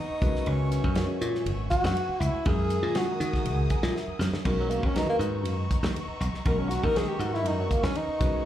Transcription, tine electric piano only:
0.21 0.82 D#3 medium
0.21 0.82 G#3 medium
0.21 0.83 C#4 medium
0.21 0.83 F#4 medium
0.21 0.83 B4 medium
0.96 1.77 D#3 medium
0.96 1.77 G#3 medium
0.96 1.78 C#4 medium
0.96 1.78 F#4 medium
0.96 1.78 C#5 medium
2.45 2.86 D#3 medium
2.45 2.87 G#3 medium
2.45 2.87 C#4 medium
2.45 2.87 F#4 medium
2.45 2.87 A#4 medium
2.95 3.77 D#3 medium
2.95 3.77 G#3 medium
2.95 3.77 C#4 medium
2.95 3.77 F#4 medium
2.95 3.77 G#4 medium
3.71 3.94 G#5 medium
3.96 4.19 E5 medium
4.21 4.44 C#5 medium
4.45 4.86 D#3 medium
4.45 4.87 G#3 medium
4.45 4.87 C#4 medium
4.45 4.87 F#4 medium
4.45 4.87 A#4 medium
4.96 5.77 D#3 medium
4.96 5.77 G#3 medium
4.96 5.78 C#4 medium
4.96 5.78 F#4 medium
4.96 5.78 B4 medium
6.45 6.86 D#3 medium
6.45 6.86 G#3 medium
6.45 6.86 C#4 medium
6.45 6.87 F#4 medium
6.45 6.87 A#4 medium
6.95 7.77 D#3 medium
6.95 7.77 G#3 medium
6.95 7.77 C#4 medium
6.95 7.77 F#4 medium
6.95 7.77 A#4 medium
8.20 8.45 D#3 medium
8.20 8.45 G#3 medium
8.20 8.45 C#4 medium
8.20 8.45 F#4 medium
8.20 8.45 B4 medium

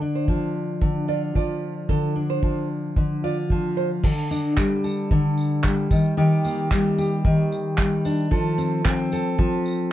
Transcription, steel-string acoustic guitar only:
0.00 0.81 D3 medium
0.00 0.02 D4 medium
0.00 2.15 D4 medium
0.29 1.34 F3 medium
0.81 1.89 D3 medium
1.08 3.23 F4 medium
1.36 2.42 F3 medium
1.89 2.97 D3 medium
2.16 4.30 D4 medium
2.43 3.50 F3 medium
2.97 4.04 D3 medium
3.24 4.09 F4 medium
3.51 4.09 F3 medium
4.04 5.11 D3 medium
4.04 4.83 A4 medium
4.31 6.20 D4 medium
4.58 5.64 G3 medium
4.84 5.96 A4 medium
5.11 5.91 D3 medium
5.64 6.71 G3 medium
5.91 6.17 D#3 medium
6.17 7.25 D#3 medium
6.17 6.97 G4 medium
6.45 8.37 A#3 medium
6.71 7.77 G3 medium
6.98 8.31 G4 medium
7.25 9.16 D#3 medium
7.78 8.31 G3 medium
8.05 8.37 D4 medium
8.31 9.37 F3 medium
8.31 9.11 A4 medium
8.58 8.84 C4 medium
8.85 9.92 C4 medium
9.13 9.93 A4 medium
9.38 9.93 F3 medium

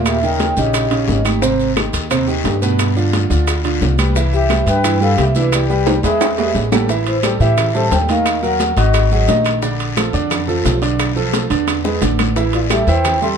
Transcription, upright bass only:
0.00 0.51 D#2 medium
0.57 1.05 A#1 medium
1.08 1.88 G#1 medium
1.93 2.41 D#2 medium
2.44 3.24 G2 medium
3.30 3.78 D2 medium
3.81 4.61 C2 medium
4.66 5.14 G2 medium
5.17 5.98 C2 medium
6.03 6.51 E2 medium
6.55 7.35 A1 medium
7.40 7.88 A2 medium
7.91 8.71 D#2 medium
8.77 9.25 G#1 loud
9.28 10.08 A#1 medium
10.13 10.61 F2 medium
10.65 11.45 B1 loud
11.50 11.98 E2 medium
12.02 12.82 A1 medium
12.87 13.35 E2 medium

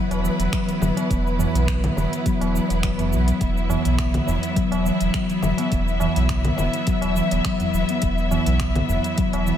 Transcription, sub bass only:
0.11 0.29 E1 loud
0.39 0.48 E1 medium
0.81 0.92 E1 medium
1.11 1.47 E1 loud
1.55 1.90 B1 medium
1.97 2.07 E1 medium
2.41 2.60 E1 loud
2.70 3.14 E1 medium
3.12 3.32 B1 medium
3.41 3.77 E1 loud
3.86 4.21 B1 medium
4.28 4.38 E1 medium
4.72 4.91 E1 loud
5.01 5.10 E1 medium
5.43 5.53 E1 medium
5.72 6.08 E1 loud
6.17 6.51 B1 loud
6.59 6.69 E1 medium
7.03 7.21 E1 loud
7.32 7.41 E1 medium
7.74 7.84 E1 medium
8.03 8.39 E1 loud
8.46 8.82 B1 medium
8.89 8.99 E1 medium
9.34 9.52 E1 loud

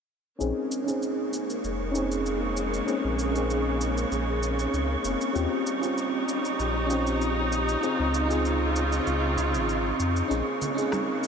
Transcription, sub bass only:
0.40 0.52 A#1 medium
1.64 2.81 F1 medium
3.04 4.05 A#1 medium
4.11 4.67 A#1 medium
4.73 4.96 C#2 medium
5.04 5.16 F1 medium
5.35 5.47 D#2 medium
6.59 7.76 A#1 medium
7.99 9.00 C#2 medium
9.06 9.37 C#2 medium
9.37 9.55 C#2 medium
9.53 9.93 G#1 medium
9.99 10.22 F2 medium
10.30 10.42 A#1 medium

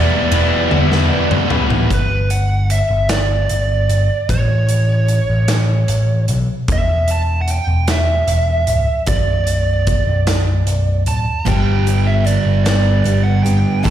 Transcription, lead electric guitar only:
0.00 1.47 D5 loud
1.94 2.33 B4 medium
2.31 2.71 F#5 loud
2.71 3.10 E5 medium
3.10 4.29 D5 medium
4.30 6.25 C#5 medium
6.72 7.11 E5 loud
7.11 7.41 A5 loud
7.41 7.48 F#5 medium
7.51 7.91 G5 medium
7.90 9.08 E5 medium
9.08 11.03 D5 medium
11.08 11.48 A5 medium
11.48 12.09 G5 medium
12.07 12.26 E5 medium
12.26 12.63 D5 medium
12.64 13.27 D5 medium
13.23 13.43 F#5 medium
13.43 13.84 G5 medium
13.84 13.90 A5 loud

